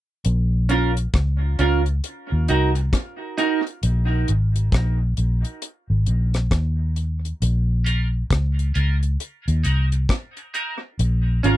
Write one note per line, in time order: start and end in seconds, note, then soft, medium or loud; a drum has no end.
0.25 1.06 A#1 loud
0.25 closed hi-hat medium
0.69 0.90 C#4 medium
0.69 0.91 F4 medium
0.69 0.91 A#4 medium
0.69 closed hi-hat medium
0.97 closed hi-hat medium
1.14 1.54 C#2 medium
1.14 kick loud
1.14 cross-stick medium
1.14 closed hi-hat medium
1.59 1.99 C#2 medium
1.59 1.80 C#4 medium
1.59 1.80 F4 medium
1.59 1.81 A#4 medium
1.59 closed hi-hat medium
1.86 closed hi-hat medium
2.04 closed hi-hat medium
2.32 2.47 D#2 medium
2.48 2.89 C2 medium
2.48 2.69 D#4 medium
2.48 2.70 F#4 medium
2.48 2.70 A#4 medium
2.48 closed hi-hat medium
2.75 muted clean electric guitar stroke soft
2.75 closed hi-hat medium
2.93 kick loud
2.93 cross-stick loud
2.93 closed hi-hat medium
3.38 3.59 D#4 medium
3.38 3.59 F#4 medium
3.38 3.59 A#4 loud
3.38 closed hi-hat medium
3.67 closed hi-hat medium
3.83 4.23 A#1 medium
3.83 closed hi-hat medium
4.28 4.69 G#1 medium
4.28 closed hi-hat medium
4.56 closed hi-hat medium
4.72 5.13 A#1 medium
4.72 kick loud
4.72 cross-stick loud
4.72 closed hi-hat medium
5.17 5.42 A#1 medium
5.17 closed hi-hat medium
5.45 closed hi-hat medium
5.62 closed hi-hat medium
5.90 6.05 G#1 medium
6.06 6.47 A#1 medium
6.06 closed hi-hat medium
6.34 cross-stick medium
6.34 closed hi-hat medium
6.51 7.32 D#2 medium
6.51 kick loud
6.51 cross-stick loud
6.51 closed hi-hat medium
6.96 closed hi-hat medium
7.25 closed hi-hat soft
7.42 8.22 A#1 loud
7.42 closed hi-hat medium
7.84 8.06 C#4 medium
7.84 8.07 F4 medium
7.84 8.07 A#4 loud
7.84 closed hi-hat medium
8.31 8.71 C#2 medium
8.31 kick loud
8.31 cross-stick loud
8.31 closed hi-hat medium
8.59 closed hi-hat medium
8.74 9.16 C#2 medium
8.74 8.96 C#4 medium
8.74 8.96 F4 medium
8.74 8.96 A#4 medium
8.74 closed hi-hat medium
9.03 closed hi-hat medium
9.20 closed hi-hat medium
9.48 9.63 D#2 medium
9.48 closed hi-hat medium
9.63 10.05 C2 medium
9.63 9.85 D#4 medium
9.63 9.86 F#4 medium
9.63 9.86 A#4 medium
9.63 closed hi-hat medium
9.92 muted clean electric guitar stroke soft
9.92 closed hi-hat soft
10.09 kick loud
10.09 cross-stick loud
10.09 closed hi-hat medium
10.37 muted clean electric guitar stroke soft
10.37 closed hi-hat soft
10.54 10.75 D#4 medium
10.54 10.75 F#4 medium
10.54 10.76 A#4 loud
10.54 closed hi-hat medium
10.99 11.39 A#1 loud
10.99 closed hi-hat medium
11.43 11.57 G#1 loud
11.43 11.57 C#4 medium
11.43 11.57 F4 medium
11.43 11.57 A#4 medium
11.43 closed hi-hat medium